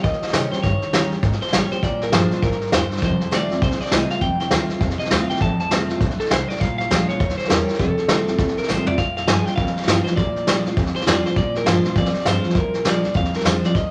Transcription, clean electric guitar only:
0.03 D#5
0.52 C5
0.63 C#5
1.42 C5
1.54 C#5
1.72 C5
1.84 D5
2.03 A#4
2.14 C5
2.43 A#4
2.74 C5
3.04 C5
3.34 D5
3.63 C5
3.81 D5
3.92 D#5
4.11 F5
4.22 G5
4.41 G5
5.00 D#5
5.11 F5
5.30 G5
5.42 A5
5.60 A5
6.20 A4
6.31 C5
6.48 D5
6.60 F5
6.78 F5
7.09 C#5
7.38 C5
7.48 A#4
7.80 A4
8.58 A#4
8.70 C5
8.88 D5
8.98 F5
9.17 F5
9.27 G#5
9.45 G5
9.56 F5
10.04 C5
10.16 D5
10.96 C5
11.07 D5
11.26 C5
11.38 D5
11.57 A#4
11.68 C5
11.98 D5
12.28 C5
12.57 A#4
12.88 D5
13.17 F5
13.36 A#4
13.47 C5
13.66 D5
13.76 D#5

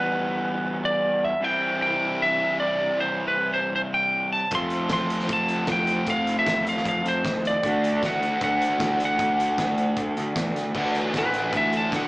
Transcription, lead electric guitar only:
Already playing: B4
0.85 D5
1.25 E5
1.44 G5
1.82 G5
2.22 E5
2.60 D5
3.00 C5
3.28 B4
3.54 C5
3.76 C5
3.94 G5
4.32 A5
4.55 C6
4.93 C6
5.33 A5
5.72 G5
6.10 F5
6.39 E5
6.69 F5
6.89 F5
7.08 C5
7.47 D5
8.06 F#5
8.44 F#5
9.05 F#5
11.18 B4
11.57 E5
11.77 A5
11.96 F#5

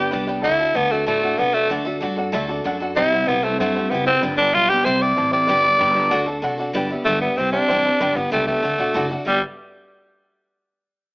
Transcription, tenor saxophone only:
0.44 E4
0.76 B3
0.91 A3
1.07 A3
1.38 B3
1.54 A3
2.96 E4
3.28 B3
3.43 A3
3.59 A3
3.90 B3
4.07 C4
4.37 D4
4.54 F4
4.69 G4
4.85 C5
5.02 D5
5.33 D5
7.05 A3
7.21 B3
7.37 C4
7.52 D4
8.16 B3
8.32 A3
8.47 A3
9.27 G3

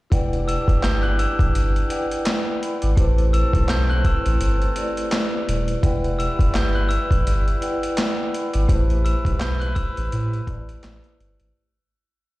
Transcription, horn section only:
0.12 E3 D4 G4
2.98 E3 C4 A4
5.82 G3 E4 B4
8.69 G3 E4 B4

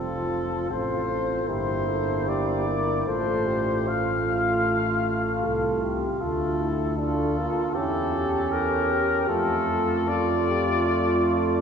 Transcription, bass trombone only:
Already playing: F1
0.69 A1
1.48 G1
3.07 A1
5.44 C2
6.21 D2
7.75 E2
9.30 F2

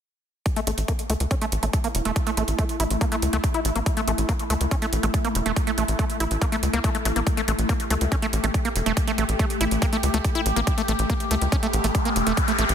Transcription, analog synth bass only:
0.67 A1
0.78 A1
1.10 C#2
1.20 C#2
1.52 A1
1.63 A1
1.95 E1
2.05 E1
2.37 A1
2.48 A1
2.80 A1
2.90 A1
3.22 C#2
3.33 C#2
3.65 A1
3.76 A1
4.07 A1
4.18 A1
4.50 C#2
4.61 C#2
4.93 A1
5.03 A1
5.35 E1
5.46 E1
5.78 A1
5.88 A1
6.20 A1
6.31 A1
6.63 C#2
6.73 C#2
7.05 A1
7.16 A1
7.48 A1
7.59 A1
7.90 C#2
8.01 C#2
8.33 A1
8.44 A1
8.76 E1
8.86 E1
9.18 A1
9.29 A1
9.61 A1
9.71 A1
10.03 C#2
10.14 C#2
10.46 A1
10.56 A1
10.88 A1
10.99 A1
11.31 C#2
11.42 C#2
11.73 A1
11.84 A1
12.16 E1
12.27 E1
12.59 A1
12.69 A1

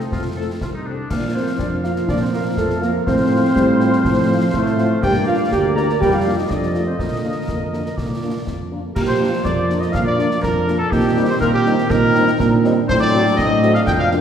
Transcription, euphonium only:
Already playing: F4
1.10 D4
1.35 C4
1.59 D4
1.84 F4
2.08 D4
2.21 C4
2.34 A#3
2.58 A3
2.83 A#3
3.07 C4
5.02 G4
5.27 F4
5.52 G4
5.77 A#4
6.01 G4
6.13 F4
6.38 D#4
6.50 D4
6.87 C4
6.98 A#3
8.95 G4
9.44 F4
9.93 D4
10.91 D#4
11.41 F4
11.90 D#4
12.39 D4

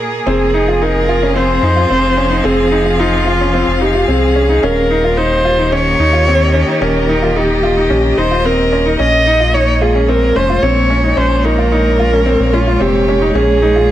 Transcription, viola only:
0.28 G#4
0.82 A#4
1.36 C5
2.45 G#4
3.00 F4
3.81 G4
4.09 G#4
4.64 A#4
5.17 C5
5.72 C#5
6.82 A#4
7.36 G4
8.17 C5
8.45 A#4
9.00 D#5
9.54 C#5
9.81 G#4
10.08 A#4
10.36 C5
10.62 C#5
11.17 C5
11.45 A#4
12.54 F4
12.81 G4
13.35 G#4

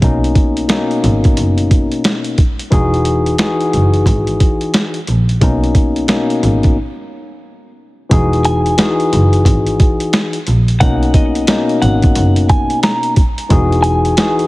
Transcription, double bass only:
0.02 B1
1.04 G#1
1.38 F#1
2.72 E1
3.74 F#1
4.06 G#1
5.08 A#1
5.42 B1
6.43 G#1
8.11 E1
9.13 F#1
9.46 G#1
10.48 A#1
10.81 B1
11.83 G#1
12.16 F#1
13.51 E1

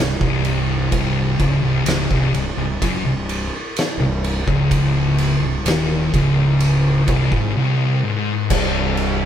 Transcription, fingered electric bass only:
Already playing: C1
0.21 C1
0.92 C1
1.39 C#1
1.62 C1
1.86 C#1
2.10 C1
2.32 C1
2.55 C1
2.82 F#1
3.02 C1
3.97 C1
4.47 C#1
5.40 C1
5.63 D#1
6.14 C#1
7.07 C1
7.32 G#1
8.50 C1

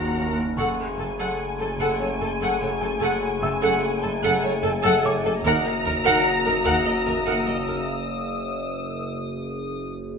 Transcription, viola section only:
Already playing: A#4
0.57 A4
0.99 A4
1.18 A4
1.59 A4
1.80 A4
2.01 A4
2.20 A4
2.40 A4
2.61 A4
2.80 A4
3.00 A4
3.40 A4
3.61 A4
4.03 A4
4.22 A4
4.41 A4
4.63 A4
4.82 A4
5.02 A4
5.24 A4
5.45 A#4
5.85 A#4
6.04 A#4
6.46 A#4
6.64 A#4
6.86 A#4
7.06 A#4
7.26 A#4
7.47 A#4
7.68 A#4

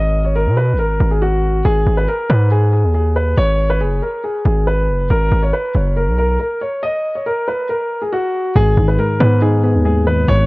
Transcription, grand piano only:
Already playing: D#5
0.25 C#5
0.35 A#4
0.57 B4
0.79 A#4
1.11 G#4
1.22 F#4
1.65 G#4
1.97 B4
2.08 A#4
2.30 B4
2.51 G#4
2.73 G#4
2.94 G#4
3.16 B4
3.38 C#5
3.70 B4
3.81 G#4
4.02 A#4
4.24 G#4
4.46 G#4
4.67 B4
5.10 A#4
5.43 C#5
5.53 B4
5.75 C#5
5.97 A#4
6.18 A#4
6.40 A#4
6.61 C#5
6.83 D#5
7.15 C#5
7.26 A#4
7.48 B4
7.69 A#4
8.02 G#4
8.12 F#4
8.56 G#4
8.88 B4
8.99 A#4
9.20 B4
9.42 G#4
9.63 G#4
9.85 G#4
10.07 B4
10.28 C#5

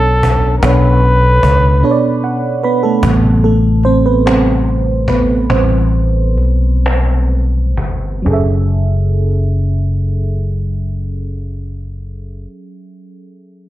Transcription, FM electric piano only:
Already playing: B2 B3 C#4 D4 A4 C#5
0.62 B2 B3 D4 A4 C#5
1.82 B2 B3 D4 A4 C#5
1.91 D5
2.24 F#5
2.63 B3 B4 B5
2.83 A3 A4
3.04 C3 G3 B3
3.44 A3 A4
3.85 C4 C5
4.06 B3 B4
4.26 C3 G3 C4 B4 C5
5.09 B3 B4
5.51 E3 G3 C4 B4 C5
8.22 F#3 C#4
8.27 G#4 A4
8.33 E5

